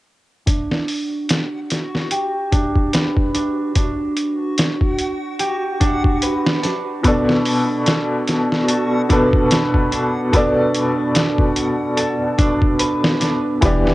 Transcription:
0.46 2.51 D4 medium
0.46 13.65 F#4 medium
0.46 kick medium
0.46 closed hi-hat medium
0.71 snare soft
0.88 open hi-hat medium
1.29 snare loud
1.29 closed hi-hat medium
1.70 snare soft
1.70 closed hi-hat medium
1.95 snare soft
2.11 4.47 G4 medium
2.11 closed hi-hat medium
2.51 3.34 D4 medium
2.51 kick medium
2.51 closed hi-hat medium
2.76 kick medium
2.93 4.98 B4 medium
2.93 snare loud
2.93 closed hi-hat medium
3.17 kick medium
3.34 3.75 D4 medium
3.34 closed hi-hat medium
3.75 5.80 D4 medium
3.75 kick medium
3.75 closed hi-hat medium
4.17 closed hi-hat medium
4.58 snare loud
4.58 closed hi-hat medium
4.81 kick medium
4.99 closed hi-hat medium
5.39 7.75 G4 medium
5.39 closed hi-hat medium
5.80 6.62 D4 medium
5.80 kick medium
5.80 closed hi-hat medium
6.04 kick medium
6.22 8.27 B4 medium
6.22 closed hi-hat medium
6.47 snare medium
6.62 7.03 D4 medium
6.62 snare soft
6.62 closed hi-hat medium
7.03 9.05 B2 medium
7.03 9.06 B3 medium
7.03 9.09 D4 medium
7.03 9.07 A4 medium
7.03 kick loud
7.03 closed hi-hat medium
7.08 9.07 D5 medium
7.29 snare medium
7.45 open hi-hat medium
7.86 snare loud
7.86 closed hi-hat medium
8.27 snare soft
8.27 closed hi-hat medium
8.52 snare soft
8.68 10.87 A4 medium
8.68 closed hi-hat medium
9.09 10.29 B2 medium
9.09 10.29 B3 medium
9.09 9.91 D4 loud
9.09 10.30 A4 medium
9.09 10.31 B4 medium
9.09 kick medium
9.09 closed hi-hat medium
9.33 kick medium
9.51 11.55 B4 medium
9.51 snare loud
9.51 closed hi-hat medium
9.74 kick medium
9.91 10.32 D4 medium
9.91 closed hi-hat medium
10.32 12.34 B2 medium
10.32 12.35 B3 medium
10.32 12.37 D4 medium
10.32 12.36 A4 medium
10.32 kick loud
10.32 closed hi-hat medium
10.37 12.36 D5 medium
10.75 closed hi-hat medium
11.15 snare loud
11.15 closed hi-hat medium
11.38 kick medium
11.56 closed hi-hat medium
11.97 13.94 A4 medium
11.97 closed hi-hat medium
12.38 13.20 D4 medium
12.38 kick medium
12.38 closed hi-hat medium
12.62 kick medium
12.79 13.94 B4 medium
12.79 closed hi-hat medium
13.04 snare loud
13.20 13.94 D4 medium
13.20 snare soft
13.20 closed hi-hat medium
13.61 13.94 E1 medium
13.61 13.94 E3 medium
13.61 13.94 B3 medium
13.61 13.94 G4 medium
13.61 kick loud
13.61 closed hi-hat medium
13.65 13.94 D5 medium
13.87 snare medium

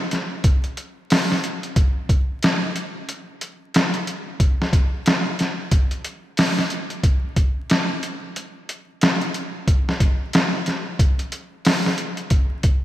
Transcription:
0.11 snare soft
0.11 closed hi-hat medium
0.44 kick loud
0.44 closed hi-hat medium
0.64 closed hi-hat soft
0.77 closed hi-hat medium
1.10 snare loud
1.10 open hi-hat medium
1.32 snare soft
1.44 closed hi-hat medium
1.63 closed hi-hat soft
1.76 kick loud
1.76 closed hi-hat medium
2.09 kick medium
2.09 closed hi-hat medium
2.43 snare loud
2.43 closed hi-hat medium
2.76 closed hi-hat medium
3.09 closed hi-hat medium
3.41 closed hi-hat medium
3.74 snare loud
3.74 closed hi-hat medium
3.94 closed hi-hat soft
4.07 closed hi-hat medium
4.40 kick loud
4.40 closed hi-hat medium
4.62 snare soft
4.73 kick medium
4.73 closed hi-hat medium
5.06 snare loud
5.06 closed hi-hat medium
5.39 snare soft
5.39 closed hi-hat medium
5.71 kick loud
5.71 closed hi-hat medium
5.91 closed hi-hat soft
6.05 closed hi-hat medium
6.37 snare loud
6.37 open hi-hat medium
6.59 snare medium
6.70 closed hi-hat medium
6.90 closed hi-hat soft
7.03 kick loud
7.03 closed hi-hat medium
7.36 kick medium
7.36 closed hi-hat medium
7.70 snare loud
7.70 closed hi-hat medium
8.03 closed hi-hat medium
8.36 closed hi-hat medium
8.69 closed hi-hat medium
9.01 snare loud
9.01 closed hi-hat medium
9.21 closed hi-hat soft
9.34 closed hi-hat medium
9.68 kick loud
9.68 closed hi-hat medium
9.89 snare soft
10.00 kick medium
10.00 closed hi-hat medium
10.33 snare loud
10.33 closed hi-hat medium
10.66 snare soft
10.66 closed hi-hat medium
10.99 kick loud
10.99 closed hi-hat medium
11.19 closed hi-hat soft
11.32 closed hi-hat medium
11.65 snare loud
11.65 open hi-hat medium
11.86 snare medium
11.98 closed hi-hat medium
12.17 closed hi-hat soft
12.30 kick loud
12.30 closed hi-hat medium
12.63 kick medium
12.63 closed hi-hat medium

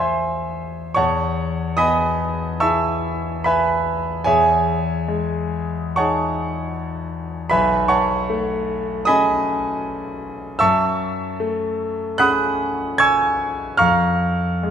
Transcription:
0.00 0.94 E2 soft
0.00 0.93 C5 soft
0.00 1.00 E5 soft
0.00 0.95 F#5 soft
0.00 0.93 G#5 soft
0.00 0.96 C6 medium
0.94 4.21 E2 soft
0.94 1.74 C#5 medium
0.94 1.75 F#5 medium
0.94 1.75 A5 medium
0.94 1.77 C#6 medium
1.77 3.12 B3 soft
1.77 2.57 D#5 medium
1.77 2.57 G#5 medium
1.77 2.57 B5 medium
1.77 2.60 D#6 medium
2.60 4.22 E4 soft
2.60 4.21 G#4 soft
2.60 3.41 E5 medium
2.60 3.41 A5 medium
2.60 3.41 C#6 medium
2.60 3.45 E6 medium
3.44 4.22 B4 medium
3.44 4.21 E5 medium
3.44 4.21 G#5 medium
3.44 4.25 B5 medium
4.24 7.48 E2 soft
4.24 5.94 G#4 medium
4.24 5.94 C#5 medium
4.24 5.94 E5 medium
4.24 5.97 G#5 medium
5.08 6.45 G#3 soft
5.96 7.48 D#4 soft
5.96 7.48 G#4 soft
5.96 6.72 C#5 medium
5.96 6.71 F#5 medium
5.96 6.71 A5 medium
5.96 6.75 C#6 medium
7.50 10.57 B1 medium
7.50 7.87 B4 medium
7.50 7.87 E5 medium
7.50 7.87 G#5 medium
7.50 7.89 B5 medium
7.88 9.04 C#5 medium
7.88 9.03 F#5 medium
7.88 9.04 A5 medium
7.88 9.07 C#6 medium
8.30 9.54 A3 soft
9.05 10.57 C#4 soft
9.05 10.57 G#4 soft
9.05 10.56 D#5 medium
9.05 10.56 G#5 medium
9.05 10.56 B5 medium
9.05 10.59 D#6 medium
10.59 13.75 F#2 medium
10.59 12.15 E5 medium
10.59 12.15 A5 medium
10.59 12.15 C#6 medium
10.59 12.19 E6 loud
11.40 12.68 A3 medium
12.18 13.75 C#4 soft
12.18 13.75 G#4 soft
12.18 12.96 F#5 medium
12.18 12.95 B5 medium
12.18 12.96 D#6 medium
12.18 12.99 F#6 loud
12.98 13.75 G#5 medium
12.98 13.75 C#6 medium
12.98 13.75 E6 medium
12.98 13.78 G#6 loud
13.77 14.71 F2 medium
13.77 14.71 F5 medium
13.77 14.71 A#5 medium
13.77 14.71 C#6 medium
13.77 14.71 F6 loud
14.63 14.71 G#3 soft

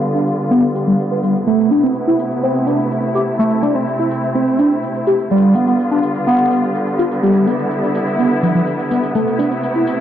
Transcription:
0.00 1.43 D3 medium
0.00 1.43 G3 medium
0.00 1.43 B3 medium
0.00 1.43 F4 medium
0.00 tambourine soft
0.15 0.23 D4 medium
0.15 tambourine soft
0.27 tambourine medium
0.39 tambourine soft
0.51 0.62 B3 loud
0.51 tambourine soft
0.63 tambourine soft
0.75 0.84 G4 medium
0.75 tambourine medium
0.87 0.92 G3 medium
0.87 tambourine soft
0.99 tambourine soft
1.11 1.20 B3 loud
1.11 tambourine soft
1.23 1.34 G3 medium
1.23 tambourine medium
1.36 tambourine soft
1.46 5.27 C3 medium
1.46 5.27 A3 medium
1.46 1.70 A3 loud
1.46 3.37 B3 medium
1.46 5.27 E4 medium
1.46 tambourine soft
1.60 tambourine soft
1.71 1.80 D4 medium
1.71 tambourine medium
1.83 1.88 C4 medium
1.83 tambourine soft
1.95 tambourine soft
2.07 2.16 E4 medium
2.07 tambourine soft
2.19 tambourine medium
2.31 tambourine soft
2.43 2.66 C4 loud
2.43 tambourine soft
2.55 tambourine soft
2.67 2.76 D4 medium
2.67 tambourine medium
2.79 tambourine soft
2.91 tambourine soft
3.03 tambourine soft
3.15 3.20 G4 medium
3.15 tambourine medium
3.27 tambourine soft
3.39 3.62 A3 loud
3.39 5.29 C4 medium
3.39 tambourine soft
3.51 tambourine soft
3.63 3.72 D4 medium
3.63 tambourine medium
3.75 3.80 C4 medium
3.75 tambourine soft
3.87 tambourine soft
3.99 4.08 E4 medium
3.99 tambourine soft
4.11 tambourine medium
4.23 tambourine soft
4.35 4.58 C4 loud
4.35 tambourine soft
4.47 tambourine soft
4.59 4.68 D4 medium
4.59 tambourine medium
4.71 tambourine soft
4.83 tambourine soft
4.95 tambourine soft
5.07 5.12 G4 medium
5.07 tambourine medium
5.19 tambourine soft
5.31 9.11 D3 medium
5.31 5.54 G3 loud
5.31 9.11 G3 medium
5.31 10.00 B3 medium
5.31 7.21 F4 medium
5.31 tambourine soft
5.43 tambourine soft
5.55 5.64 B3 medium
5.55 tambourine medium
5.67 5.72 B3 medium
5.67 tambourine soft
5.79 tambourine soft
5.91 6.00 D4 medium
5.91 tambourine soft
6.03 tambourine medium
6.15 tambourine soft
6.27 6.50 B3 loud
6.27 tambourine soft
6.39 tambourine soft
6.51 6.60 B3 medium
6.51 tambourine medium
6.63 tambourine soft
6.75 tambourine soft
6.87 tambourine soft
6.99 7.04 F4 medium
6.99 tambourine medium
7.11 tambourine soft
7.23 7.46 G3 loud
7.23 9.13 E4 medium
7.23 tambourine soft
7.35 tambourine soft
7.47 7.56 B3 medium
7.47 tambourine medium
7.59 7.64 B3 medium
7.59 tambourine soft
7.71 tambourine soft
7.83 7.91 D4 medium
7.83 tambourine soft
7.95 tambourine medium
8.07 tambourine soft
8.19 8.30 B3 loud
8.19 tambourine soft
8.31 tambourine soft
8.43 8.52 F3 medium
8.43 tambourine medium
8.55 8.60 F3 medium
8.55 tambourine soft
8.67 tambourine soft
8.79 tambourine soft
8.91 9.00 B3 medium
8.91 tambourine medium
9.03 tambourine soft
9.15 10.00 C3 medium
9.15 10.00 A3 medium
9.15 9.38 A3 loud
9.15 10.00 E4 medium
9.15 tambourine soft
9.27 tambourine soft
9.39 9.48 D4 medium
9.39 tambourine medium
9.51 9.56 C4 medium
9.51 tambourine soft
9.63 tambourine soft
9.75 9.84 E4 medium
9.75 tambourine soft
9.87 tambourine medium

